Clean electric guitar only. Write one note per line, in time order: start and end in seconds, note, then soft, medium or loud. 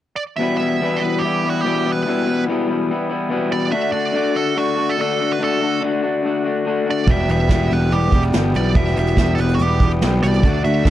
0.38 0.80 E2 medium
0.38 0.80 B2 medium
0.38 0.62 E3 medium
0.38 0.62 G3 medium
0.38 0.60 B3 medium
0.38 0.59 E4 medium
0.59 0.81 E3 medium
0.59 0.82 G3 medium
0.59 0.83 B3 medium
0.59 0.83 E4 medium
0.80 1.63 E2 medium
0.80 1.22 B2 medium
0.80 1.04 E3 medium
0.80 1.03 G3 medium
0.80 1.02 B3 medium
0.80 1.01 E4 medium
1.01 1.22 E3 soft
1.01 1.23 G3 soft
1.01 1.24 B3 medium
1.01 1.24 E4 medium
1.23 1.46 E3 medium
1.23 1.44 G3 medium
1.23 1.44 B3 medium
1.23 1.42 E4 medium
1.43 1.64 E3 medium
1.43 1.65 G3 medium
1.43 1.65 B3 medium
1.43 1.66 E4 medium
1.64 2.05 E2 medium
1.64 2.05 B2 medium
1.64 1.87 E3 medium
1.64 1.86 G3 medium
1.64 1.85 B3 medium
1.64 1.84 E4 loud
1.85 2.06 E3 soft
1.85 2.07 G3 medium
1.85 2.07 B3 medium
1.85 2.08 E4 medium
2.06 2.46 E2 medium
2.06 2.47 B2 medium
2.06 2.28 E3 medium
2.06 2.28 G3 medium
2.06 2.26 B3 medium
2.06 2.25 E4 medium
2.26 2.47 E3 soft
2.26 2.48 G3 medium
2.26 2.49 B3 medium
2.26 2.49 E4 medium
2.47 2.89 E2 medium
2.47 2.89 B2 medium
2.47 2.70 E3 medium
2.47 2.69 G3 medium
2.47 2.68 B3 medium
2.47 2.67 E4 medium
2.68 2.87 E3 soft
2.68 2.88 G3 medium
2.68 2.90 B3 medium
2.68 2.90 E4 medium
2.88 3.11 E3 medium
2.88 3.10 G3 medium
2.88 3.09 B3 medium
2.88 3.08 E4 medium
3.09 3.29 E3 soft
3.09 3.30 G3 medium
3.09 3.31 B3 medium
3.09 3.31 E4 medium
3.29 3.71 E2 medium
3.29 3.71 B2 medium
3.29 3.53 E3 medium
3.29 3.52 G3 medium
3.29 3.51 B3 medium
3.29 3.50 E4 medium
3.51 3.70 E3 soft
3.51 3.72 G3 medium
3.51 3.72 B3 medium
3.51 3.71 E4 medium
3.71 4.12 D3 medium
3.71 3.95 A3 medium
3.71 3.93 D4 medium
3.71 3.92 F#4 medium
3.92 4.13 A3 medium
3.92 4.14 D4 medium
3.92 4.15 F#4 medium
4.12 4.55 D3 medium
4.12 4.37 A3 loud
4.12 4.35 D4 medium
4.12 4.33 F#4 medium
4.34 4.55 A3 medium
4.34 4.56 D4 medium
4.34 4.57 F#4 medium
4.55 4.96 D3 medium
4.55 4.78 A3 medium
4.55 4.76 D4 medium
4.55 4.74 F#4 medium
4.76 4.97 A3 medium
4.76 4.99 D4 medium
4.76 4.99 F#4 medium
4.97 5.38 D3 medium
4.97 5.21 A3 medium
4.97 5.20 D4 medium
4.97 5.18 F#4 medium
5.19 5.39 A3 soft
5.19 5.40 D4 medium
5.19 5.41 F#4 medium
5.39 5.80 D3 medium
5.39 5.62 A3 medium
5.39 5.61 D4 medium
5.39 5.59 F#4 loud
5.60 5.81 A3 medium
5.60 5.82 D4 medium
5.60 5.83 F#4 medium
5.81 6.22 D3 medium
5.81 6.04 A3 medium
5.81 6.03 D4 medium
5.81 6.01 F#4 medium
6.02 6.24 A3 medium
6.02 6.24 D4 medium
6.02 6.25 F#4 medium
6.23 6.64 D3 medium
6.23 6.46 A3 medium
6.23 6.45 D4 medium
6.23 6.43 F#4 medium
6.44 6.65 A3 medium
6.44 6.66 D4 medium
6.44 6.67 F#4 medium
6.65 7.06 D3 medium
6.65 6.88 A3 medium
6.65 6.86 D4 medium
6.65 6.85 F#4 medium
6.86 7.08 A3 soft
6.86 7.07 D4 medium
6.86 7.06 F#4 medium
7.06 7.48 E2 medium
7.06 7.48 B2 medium
7.06 7.31 E3 medium
7.06 7.30 G3 medium
7.06 7.29 B3 medium
7.06 7.28 G4 medium
7.28 7.49 E3 medium
7.28 7.50 G3 medium
7.28 7.51 B3 medium
7.28 7.51 G4 medium
7.48 8.32 E2 medium
7.48 7.92 B2 medium
7.48 7.74 E3 medium
7.48 7.73 G3 loud
7.48 7.71 B3 medium
7.48 7.70 G4 medium
7.70 7.90 E3 medium
7.70 7.91 G3 medium
7.70 7.92 B3 medium
7.70 7.93 G4 medium
7.91 8.14 E3 medium
7.91 8.13 G3 medium
7.91 8.12 B3 medium
7.91 8.11 G4 medium
8.12 8.32 E3 medium
8.12 8.33 G3 medium
8.12 8.33 B3 medium
8.12 8.34 G4 medium
8.32 8.74 E2 medium
8.32 8.75 B2 medium
8.32 8.56 E3 medium
8.32 8.55 G3 medium
8.32 8.54 B3 loud
8.32 8.53 G4 medium
8.54 8.75 E3 soft
8.54 8.76 G3 medium
8.54 8.77 B3 medium
8.54 8.77 G4 medium
8.75 9.17 E2 medium
8.75 9.17 B2 medium
8.75 8.98 E3 medium
8.75 8.97 G3 medium
8.75 8.96 B3 medium
8.75 8.96 G4 medium
8.97 9.18 E3 soft
8.97 9.18 G3 medium
8.97 9.19 B3 medium
8.97 9.20 G4 medium
9.18 9.60 E2 medium
9.18 9.60 B2 medium
9.18 9.40 E3 medium
9.18 9.39 G3 medium
9.18 9.38 B3 medium
9.18 9.38 G4 medium
9.39 9.59 E3 medium
9.39 9.60 G3 medium
9.39 9.61 B3 medium
9.39 9.62 G4 medium
9.60 9.83 E3 medium
9.60 9.82 G3 medium
9.60 9.81 B3 medium
9.60 9.80 G4 medium
9.81 10.01 E3 soft
9.81 10.02 G3 medium
9.81 10.03 B3 medium
9.81 10.03 G4 medium
10.01 10.42 E2 medium
10.01 10.42 B2 medium
10.01 10.24 E3 medium
10.01 10.23 G3 medium
10.01 10.22 B3 medium
10.01 10.21 G4 medium
10.22 10.42 E3 medium
10.22 10.43 G3 medium
10.22 10.43 B3 medium
10.22 10.42 G4 medium
10.43 10.85 D3 medium
10.43 10.67 A3 medium
10.43 10.65 D4 medium
10.43 10.63 F#4 medium
10.64 10.86 A3 medium
10.64 10.87 D4 medium
10.64 10.88 F#4 medium
10.85 10.90 D3 medium
10.85 10.90 A3 medium